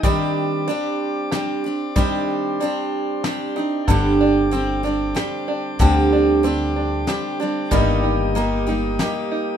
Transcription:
Already playing: C4 D#4
0.03 D#3 G3 C4 D4 G4 C5 D5 D6, kick, closed hi-hat
0.68 G3 C4 D4 G4, closed hi-hat
1.31 G3 C4 D4 G4, snare, closed hi-hat
1.64 C4 D4 G4
1.96 D#3 G3 C4 D4 G4 C6, kick, closed hi-hat
2.60 G3 C4 D4 G4, closed hi-hat
3.24 G3 C4 D4 G4, snare, closed hi-hat
3.56 C4 D4 D#4 G4
3.88 G1 G2 D3 G3 C4 D4 G4 G5 D6, kick, closed hi-hat
4.21 D4
4.51 G3 C4 D4 G4, closed hi-hat
4.83 G3 C4 D4 G4
5.15 G3 C4 D4 G4, snare, closed hi-hat
5.48 D4
5.79 D2 G2 D3 G3 C4 D4 G4, kick, closed hi-hat
6.12 D4
6.43 G3 C4 D4 G4, closed hi-hat
6.76 D4
7.07 G3 C4 D4 G4, snare, closed hi-hat
7.40 G3 C4 D4 G4
7.71 G1 G2 D#3 G3 A#3 D#4 G4 A#4 G5 D#6, kick, closed hi-hat
8.03 D#4
8.35 G3 A#3 D#4 G4, closed hi-hat
8.67 G3 A#3 D#4 G4
8.99 G3 A#3 D#4 G4, snare, closed hi-hat
9.31 D#4

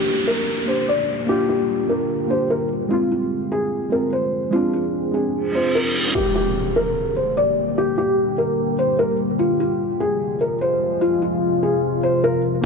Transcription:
Already playing: D3 G3 A#3 D4 G4, downlifter
0.27 A#4
0.65 A#3 D4 C5
0.70 G4
0.88 D5
1.26 A#3 D4 G4
1.31 F4
1.49 G4
1.87 A#3 D4 A#4
1.92 G4
2.27 A#3 D4 C5
2.32 G4
2.50 A#4
2.88 F3 G#3 C4 F4 G#4
2.93 F4
3.11 F4
3.52 G#4
3.89 G#3 C4 A#4
3.94 F4
4.13 C5
4.50 G#3 C4 F4
4.55 D4
4.73 F4
5.11 G#3 C4 G#4
5.16 D4
5.34 reverse cymbal
5.52 G#3 C4 C5
5.57 F4
5.75 A#4
6.15 D3 G3 A#3 G4, impact
6.35 G4
6.76 A#4
7.16 C5
7.37 D5
7.78 G4
7.98 G4
8.38 A#4
8.79 C5
8.99 A#4
9.39 C3 F3 G#3 F4
9.60 F4
10.00 G#4
10.41 A#4
10.61 C5
11.01 F4
11.22 F4
11.63 G#4
12.03 C5
12.24 A#4
12.61 A#3

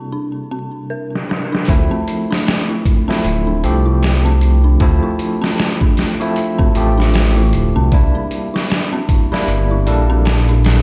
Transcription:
Already playing: C4 D4 E4
0.12 D4
0.51 C4
0.90 A#4
1.15 snare
1.29 D4, snare
1.52 D4, snare
1.68 D2 F3 A3 C4 E4, kick, closed hi-hat
1.91 C4
2.08 closed hi-hat
2.31 D4, snare
2.47 snare, closed hi-hat
2.69 E4
2.85 kick, closed hi-hat
3.08 F3 A3 C4 E4, snare
3.24 D1, closed hi-hat
3.47 D4
3.63 C2 F3 A3 C4 G4, closed hi-hat
3.86 E4
4.03 snare, closed hi-hat
4.25 C4, closed hi-hat
4.41 closed hi-hat
4.64 D4
4.80 D2 F3 A3 C4 E4, kick, closed hi-hat
5.03 E4
5.19 closed hi-hat
5.42 C4, snare
5.58 snare, closed hi-hat
5.81 D4, kick
5.97 snare, closed hi-hat
6.20 F3 A3 C4 E4, closed hi-hat
6.36 closed hi-hat
6.59 C4, kick
6.75 A1 F3 A3 C4 G4, closed hi-hat
6.98 D4, snare
7.14 snare, open hi-hat
7.37 E4
7.53 D1, closed hi-hat
7.76 C2 C4
7.92 C2 G3 A#3 D4 E4, kick, closed hi-hat
8.15 D4
8.31 closed hi-hat
8.54 E4, snare
8.70 snare, closed hi-hat
8.93 C4
9.09 kick, closed hi-hat
9.32 G3 A#3 D4 E4, snare
9.48 G1, closed hi-hat
9.71 E4
9.86 A#1 G3 A#3 D4 A4, closed hi-hat
10.10 C4
10.25 snare, closed hi-hat
10.48 D4, closed hi-hat
10.65 snare, closed hi-hat

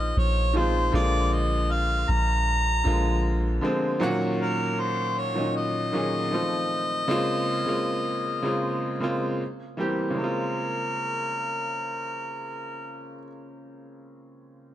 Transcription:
Already playing: A#1 D#5
0.17 A#1 C#5
0.54 D#3 F3 G#3 C4 F4 C5
0.92 A#1 D3 F3 G#3 A#3 F4 D5
1.33 D#5
1.71 F5
2.09 A#1 A#5
2.84 A#1 D3 F3 G#3 A#3 F4
3.61 D3 F3 G#3 A#3 C4
4.00 A#2 D#3 F#3 A#3 C#4 F#4
4.41 A#4
4.80 C5
5.18 C#5
5.34 A#2 D#3 F#3 A#3 C#4 D#4
5.56 D#5
5.92 A#2 D#3 F#3 A#3 C#4 G#4
6.31 D#3 F3 A3 C4 F4
7.08 C#3 G#3 A#3 C4 F4
7.66 C#3 G#3 A#3 C4 F4
8.42 C#3 G#3 A#3 C4 F4
9.00 C#3 G#3 A#3 C4 F4
9.77 E3 G3 A#3 C4 G4
10.10 C#3 G#3
10.17 A#3 C4 A#4
10.24 F4

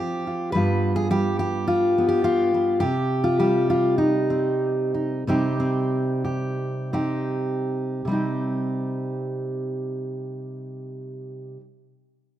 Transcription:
Already playing: F3 C4 F4 G4
0.27 F4
0.52 G2 G3 B3 F4 B4
0.96 G#4
1.10 G3 G4
1.39 G4
1.68 F4
1.98 B3
2.09 G4
2.24 F4
2.54 B3
2.80 C3 G4
3.24 F4
3.39 G3 G4
3.70 F4
3.98 D#4
4.30 C4
4.94 D#4
5.27 C3 G3 C4 D#4 G4
5.60 C4
6.25 G4
6.93 C4 D#4 G4
8.05 C3 G3 C4
8.11 D#4 G4

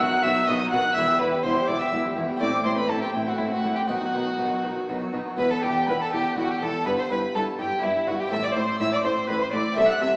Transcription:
Already playing: B3 F#4
0.00 B2 D#3 F#4 F#5 F#6
0.12 F#3 D#4
0.23 B1 B2 D#3 F#4 E5 E6
0.35 F#3 D#4
0.47 B1 B2 D#3 F#4 D#5 D#6
0.59 F#3 D#4
0.71 B1 B2 D#3 F#4 F#5 F#6
0.84 F#3 D#4
0.93 E1 E2 B3 E4 E5 E6
0.98 E3
1.08 G3 G4
1.19 E1 E2 E3 E4 B4 B5
1.32 G3 G4
1.43 E1 E2 E3 E4 C5 C6
1.57 G3 G4
1.68 E1 E2 E3 E4 D5 D6
1.80 G3 G4 E5 E6
1.92 E1 E2 E3 E4
2.05 G3 G4
2.17 E1 E2 E3 E4
2.29 G3 G4
2.37 A3 C4 E4
2.41 A1 A2 C4 E4 D5 D6
2.53 A3 C4
2.65 A1 A2 C4 E4 C5 C6
2.77 A3 C4 B4 B5
2.89 A1 A2 C4 E4 A4 A5
3.01 A3 C4 G4 G5
3.14 A1 A2 C4 E4
3.27 A3 C4 F#4 F#5
3.38 A1 A2 C4 E4 E5
3.50 A3 C4 F#4 F#5
3.64 A1 A2 C4 E4
3.75 A3 C4 G4 G5
3.87 B1 B2 D#3 B3 D#4 F#4 F#5
4.01 F#3 F#4
4.14 B1 B2 D#3 D#4
4.26 F#3 F#4
4.38 B1 B2 D#3 D#4
4.52 F#3 F#4
4.64 B1 B2 D#3 D#4
4.76 F#3 F#4
4.89 B1 B2 D#3 D#4
5.02 F#3 F#4
5.13 B1 B2 D#3 D#4
5.27 F#3 F#4
5.37 E1 E2 B3 E4 B4 B5
5.51 A4 A5
5.63 E1 E2 E4 G4 G5
5.88 E1 E2 E4 B4 B5
6.01 A4 A5
6.12 E1 E2 E4 G4 G5
6.37 E1 E2 E4 F#4 F#5
6.50 G4 G5
6.61 E1 E2 E4 A4 A5
6.83 G1 G2 B3 E4 B4 B5
6.99 C5 C6
7.10 G1 G2 E4 B4 B5
7.35 G1 G2 E4 A4 A5
7.59 G1 G2 E4 G4 G5
7.83 G1 G2 E4 E5
8.07 G1 G2 E4 F#4 F#5
8.20 G4 G5
8.27 C4 E4 A4
8.31 A1 A2 E4 E5 E6
8.43 D5 D6
8.56 A1 A2 E4 C5 C6
8.80 A1 A2 E4 E5 E6
8.93 D5 D6
9.04 A1 A2 E4 C5 C6
9.28 A1 A2 E4 B4 B5
9.40 C5 C6
9.52 A1 A2 E4 D5 D6
9.72 C4 E4 A4
9.76 C2 C3 A4 E5 E6
9.88 F#5 F#6
10.01 C2 C3 A4 E5 E6

